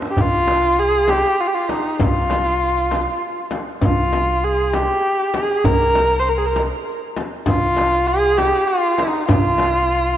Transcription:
0.02 tombak ka
0.11 kamancheh G4
0.17 upright bass C2, kamancheh F4, tombak dum, frame drum
0.48 tombak tek, frame drum
0.79 kamancheh G#4
1.08 kamancheh G4, tombak tek, frame drum
1.41 kamancheh F4
1.47 kamancheh G4
1.54 kamancheh F4
1.62 kamancheh F4
1.69 kamancheh D#4, tombak tek, frame drum
2.00 upright bass C2, kamancheh F4, frame drum, tombak dum
2.30 tombak tek, frame drum
2.91 tombak tek, frame drum
3.51 tombak tek, frame drum
3.81 upright bass C2, frame drum, tombak dum
3.86 kamancheh F4
4.13 frame drum
4.44 kamancheh G#4
4.73 kamancheh G4, tombak tek, frame drum
5.34 kamancheh G#4, tombak tek, frame drum
5.64 upright bass C2, kamancheh A#4, tombak dum, frame drum
5.95 tombak tek, frame drum
6.19 kamancheh C5
6.29 kamancheh A#4
6.38 kamancheh G#4
6.46 kamancheh A#4
6.56 tombak tek, frame drum
7.17 tombak tek, frame drum
7.46 upright bass C2, kamancheh F4, frame drum, tombak dum
7.77 tombak tek, frame drum
8.07 kamancheh G#4
8.37 kamancheh G4, tombak tek, frame drum
8.68 kamancheh F4
8.98 kamancheh D#4, tombak tek, frame drum
9.28 upright bass C2, kamancheh F4, frame drum, tombak dum
9.58 tombak tek, frame drum

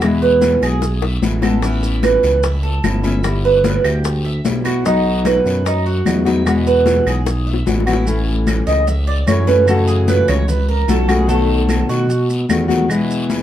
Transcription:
Already playing: analog synth bass E2, cuban tres E5
0.01 nylon-string guitar B2 E3 G#3 B3 E4, high bongo, high conga, long guiro, claves, maracas
0.22 cuban tres B4, high bongo, high conga
0.41 high bongo, high conga, short guiro, maracas
0.62 analog synth bass B1, cuban tres G#4, high bongo, high conga, short guiro, claves, maracas
0.82 muted nylon-string guitar stroke, high bongo, high conga, long guiro, maracas
1.02 cuban tres E5, high bongo, high conga
1.22 analog synth bass A1, nylon-string guitar E3 G#3 B3 E4, low bongo, high conga, short guiro, maracas
1.42 nylon-string guitar E3 G#3 B3 E4, cuban tres A4, low bongo, high conga, short guiro, claves, maracas
1.62 nylon-string guitar E3 B3 C#4 E4, cuban tres E4, high bongo, high conga, long guiro, maracas
1.83 high bongo, high conga, maracas
2.03 cuban tres B4, high bongo, high conga, short guiro, claves, maracas
2.23 analog synth bass C#2, high bongo, short guiro, maracas
2.43 cuban tres E4, muted nylon-string guitar stroke, high bongo, high conga, long guiro, maracas
2.63 cuban tres A4, high conga
2.84 analog synth bass G1, nylon-string guitar E3 B3 C#4 E4, high bongo, low bongo, high conga, short guiro, claves, maracas
3.03 nylon-string guitar B3 C#4 E4, cuban tres E5, high bongo, high conga, short guiro, maracas
3.23 nylon-string guitar G3 B3 E4, high bongo, high conga, long guiro, claves, maracas
3.45 cuban tres B4, high bongo, high conga
3.64 high bongo, high conga, short guiro, maracas
3.84 analog synth bass D2, cuban tres G4, high bongo, high conga, short guiro, claves, maracas
4.04 muted nylon-string guitar stroke, high bongo, high conga, long guiro, maracas
4.24 cuban tres E5, high conga
4.45 analog synth bass B1, nylon-string guitar G3 B3 E4, high bongo, low bongo, high conga, short guiro, maracas
4.64 nylon-string guitar B3 E4, cuban tres F#4, high bongo, short guiro, claves, maracas
4.84 nylon-string guitar B2 F#3 B3 D#4 F#4, cuban tres D#4, high bongo, high conga, long guiro, maracas
5.05 high bongo, high conga
5.25 cuban tres B4, high bongo, high conga, short guiro, claves, maracas
5.46 analog synth bass F#2, high bongo, short guiro, maracas
5.65 cuban tres D#4, muted nylon-string guitar stroke, high bongo, high conga, long guiro, maracas
5.86 cuban tres F#4, high conga
6.05 analog synth bass E2, nylon-string guitar F#3 B3 D#4 F#4, high bongo, low bongo, high conga, short guiro, claves, maracas
6.25 nylon-string guitar F#3 B3 D#4 F#4, cuban tres E5, high bongo, high conga, short guiro, maracas
6.45 nylon-string guitar B2 E3 G#3 B3 F#4, high bongo, high conga, long guiro, claves, maracas
6.66 cuban tres B4, high bongo, high conga, maracas
6.86 high bongo, high conga, short guiro, maracas
7.07 analog synth bass B1, cuban tres G#4, high bongo, high conga, short guiro, claves, maracas
7.26 muted nylon-string guitar stroke, high bongo, high conga, long guiro, maracas
7.47 cuban tres E5, high conga
7.53 low bongo
7.66 analog synth bass A1, nylon-string guitar E3 G#3 B3 F#4, low bongo, high conga, short guiro, maracas
7.80 low bongo
7.86 nylon-string guitar E3 G#3 B3 F#4, cuban tres E4, short guiro, claves, maracas
7.93 low bongo
8.05 nylon-string guitar E3 A3 C#4 E4, high conga, long guiro, maracas
8.27 high conga
8.47 high conga, short guiro, claves, maracas
8.67 analog synth bass C#2, cuban tres D#5, short guiro, maracas
8.87 cuban tres E5, muted nylon-string guitar stroke, high conga, long guiro, maracas
9.07 cuban tres D5, high conga
9.26 analog synth bass F#2, nylon-string guitar E3 A3 C#4 E4, cuban tres C#5, high conga, short guiro, claves, maracas
9.47 nylon-string guitar A3 C#4 E4, cuban tres B4, high conga, short guiro, maracas
9.66 nylon-string guitar C#3 E3 A3 C#4 F#4, cuban tres A4, high conga, long guiro, claves, maracas
9.87 cuban tres G#4, high conga, maracas
10.08 cuban tres B4, high conga, short guiro, maracas
10.28 analog synth bass C#2, cuban tres C#5, high conga, low conga, short guiro, claves, maracas
10.48 cuban tres B4, muted nylon-string guitar stroke, high conga, low conga, long guiro, maracas
10.69 cuban tres A#4, high conga
10.87 analog synth bass B1, nylon-string guitar E3 A3 C#4 F#4, cuban tres A4, high conga, short guiro, maracas
11.08 nylon-string guitar E3 A3 C#4 F#4, cuban tres G#4, high conga, short guiro, claves, maracas
11.27 nylon-string guitar B2 D#3 A3 B3 F#4, cuban tres A4, high conga, long guiro, maracas
11.49 high conga
11.69 high conga, short guiro, claves, maracas
11.89 analog synth bass B2, cuban tres F#4, short guiro, maracas
12.09 muted nylon-string guitar stroke, high conga, long guiro, maracas
12.29 high conga, maracas
12.49 analog synth bass E2, nylon-string guitar D#3 A3 B3 F#4, high conga, short guiro, claves, maracas
12.68 nylon-string guitar D#3 A3 B3 F#4, high conga, short guiro, maracas
12.88 nylon-string guitar B2 E3 G#3 B3 E4, high conga, long guiro, claves, maracas
13.10 high conga, maracas
13.30 high conga, short guiro, maracas

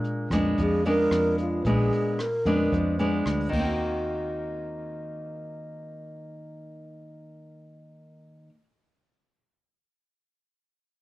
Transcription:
Already playing: nylon-string guitar A#2 G#3 D4
0.04 closed hi-hat
0.30 fingered electric bass F2, nylon-string guitar G#3 B3 D4, kick, cross-stick, closed hi-hat
0.58 fingered electric bass F2, nylon-string guitar F3, alto flute G#4, kick, closed hi-hat
0.85 nylon-string guitar G#3 B3 D4, alto flute A#4, closed hi-hat
1.11 fingered electric bass F2, cross-stick, closed hi-hat
1.38 alto flute F4, closed hi-hat
1.65 fingered electric bass A#1, nylon-string guitar A#2 G#3 B3 D4, alto flute G#4, kick, closed hi-hat
1.93 closed hi-hat
2.19 alto flute A#4, cross-stick, closed hi-hat
2.45 fingered electric bass F2, nylon-string guitar G#3 B3 D4, closed hi-hat
2.72 fingered electric bass F2, nylon-string guitar F3, kick, closed hi-hat
2.99 nylon-string guitar G#3 B3 D4, closed hi-hat
3.26 fingered electric bass D2, cross-stick, closed hi-hat
3.49 fingered electric bass D#2, nylon-string guitar D#3, kick, crash
3.54 nylon-string guitar A#3
3.59 nylon-string guitar C4
3.64 nylon-string guitar F#4

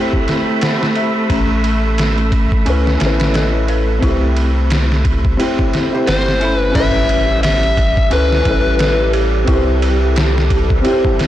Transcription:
Already playing: string section A3, felt piano C4 E4 G4, synth bell E4 G4, synth texture B5
0.00 felt piano C5
0.13 kick
0.28 snare, ride
0.61 synth bell C5, snare, ride
0.83 snare
0.95 synth bell E5, ride
1.30 sub bass A1, synth bell C#4, kick, ride
1.64 ride
1.98 snare, ride
2.18 ride
2.32 kick, ride
2.52 kick
2.66 sub bass C#2, felt piano C#4 E4 A4, synth bell E4, ride
2.70 felt piano B4
2.87 snare
2.98 sub bass A1, felt piano C#4 E4, snare, ride
3.03 felt piano A4 B4
3.20 snare, ride
3.34 synth bell A4, snare, ride
3.68 synth bell B4, ride
3.99 sub bass C2, felt piano C4 E4, kick, ride
4.03 synth bell E4, felt piano G4
4.08 felt piano C5
4.37 ride
4.70 snare, ride
4.92 snare
5.05 kick, ride
5.25 kick
5.37 felt piano C4 E4 G4, synth bell G4, ride
5.42 felt piano C5
5.59 kick
5.73 snare, ride
5.91 felt piano C4 E4 G4
5.95 felt piano C5
6.07 sub bass G1, synth bell C5, electric slide guitar C5, snare, ride
6.28 snare
6.39 felt piano C#4 E4 A4, synth bell E5, ride
6.44 felt piano B5
6.57 electric slide guitar B4
6.71 felt piano C#4 E4, synth bell C#4, electric slide guitar E5, kick, crash, ride, impact
6.75 sub bass A1, string section G3, synth texture A4, felt piano A4
6.80 felt piano B4
7.09 ride
7.43 electric slide guitar E5, snare, ride
7.63 ride
7.77 kick, ride
7.97 kick
8.10 sub bass C#2, felt piano C#4 E4 A4, synth bell E4, electric slide guitar B4, ride
8.15 felt piano B4
8.32 snare
8.41 felt piano C#4 E4, kick, ride
8.46 sub bass A1, felt piano A4
8.51 felt piano B4
8.79 synth bell A4, snare, ride
9.13 synth bell B4, ride
9.44 sub bass C2, felt piano C4 E4, synth bell E4, kick, ride
9.50 felt piano G4 C5
9.82 ride
10.16 snare, ride
10.38 snare
10.50 kick, ride
10.70 kick
10.81 felt piano C4 E4, synth bell G4, ride
10.87 felt piano G4 C5
11.05 kick
11.19 snare, ride

